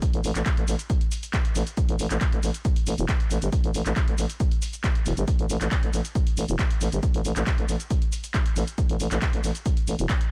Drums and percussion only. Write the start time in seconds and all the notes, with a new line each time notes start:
0.02 kick, closed hi-hat, shaker
0.13 closed hi-hat
0.24 open hi-hat, shaker
0.35 clap, closed hi-hat, shaker
0.46 kick, clap, closed hi-hat, shaker
0.57 closed hi-hat
0.68 open hi-hat, shaker
0.79 closed hi-hat, shaker
0.90 kick, closed hi-hat, shaker
1.01 closed hi-hat
1.12 open hi-hat, shaker
1.23 closed hi-hat, shaker
1.33 kick, clap, closed hi-hat, shaker
1.45 closed hi-hat
1.55 open hi-hat, shaker
1.67 closed hi-hat, shaker
1.77 kick, closed hi-hat, shaker
1.89 closed hi-hat
1.99 open hi-hat, shaker
2.11 clap, closed hi-hat, shaker
2.21 kick, clap, closed hi-hat, shaker
2.32 closed hi-hat
2.43 open hi-hat, shaker
2.54 closed hi-hat, shaker
2.65 kick, closed hi-hat, shaker
2.76 closed hi-hat
2.87 open hi-hat, shaker
2.98 closed hi-hat, shaker
3.09 kick, clap, closed hi-hat, shaker
3.20 closed hi-hat
3.31 open hi-hat, shaker
3.42 closed hi-hat, shaker
3.52 kick, closed hi-hat, shaker
3.64 closed hi-hat
3.74 open hi-hat, shaker
3.86 clap, closed hi-hat, shaker
3.96 kick, clap, closed hi-hat, shaker
4.08 closed hi-hat
4.18 open hi-hat, shaker
4.30 closed hi-hat, shaker
4.40 kick, closed hi-hat, shaker
4.51 closed hi-hat
4.62 open hi-hat, shaker
4.73 closed hi-hat, shaker
4.84 kick, clap, closed hi-hat, shaker
4.95 closed hi-hat
5.06 open hi-hat, shaker
5.17 closed hi-hat, shaker
5.28 kick, closed hi-hat, shaker
5.39 closed hi-hat
5.50 open hi-hat, shaker
5.61 clap, closed hi-hat, shaker
5.71 kick, clap, closed hi-hat, shaker
5.83 closed hi-hat
5.93 open hi-hat, shaker
6.05 closed hi-hat, shaker
6.15 kick, closed hi-hat, shaker
6.27 closed hi-hat
6.37 open hi-hat, shaker
6.49 closed hi-hat, shaker
6.59 kick, clap, closed hi-hat, shaker
6.71 closed hi-hat
6.81 open hi-hat, shaker
6.92 closed hi-hat, shaker
7.03 kick, closed hi-hat, shaker
7.14 closed hi-hat
7.25 open hi-hat, shaker
7.36 clap, closed hi-hat, shaker
7.47 kick, clap, closed hi-hat, shaker
7.58 closed hi-hat
7.69 open hi-hat, shaker
7.80 closed hi-hat, shaker
7.90 kick, closed hi-hat, shaker
8.02 closed hi-hat
8.12 open hi-hat, shaker
8.24 closed hi-hat, shaker
8.34 kick, clap, closed hi-hat, shaker
8.46 closed hi-hat
8.56 open hi-hat, shaker
8.68 closed hi-hat, shaker
8.78 kick, closed hi-hat, shaker
8.89 closed hi-hat
9.00 open hi-hat, shaker
9.11 clap, closed hi-hat, shaker
9.22 kick, clap, closed hi-hat, shaker
9.33 closed hi-hat
9.44 open hi-hat, shaker
9.55 closed hi-hat, shaker
9.66 kick, closed hi-hat, shaker
9.77 closed hi-hat
9.87 open hi-hat, shaker
9.99 closed hi-hat, shaker
10.09 kick, clap, closed hi-hat, shaker
10.21 closed hi-hat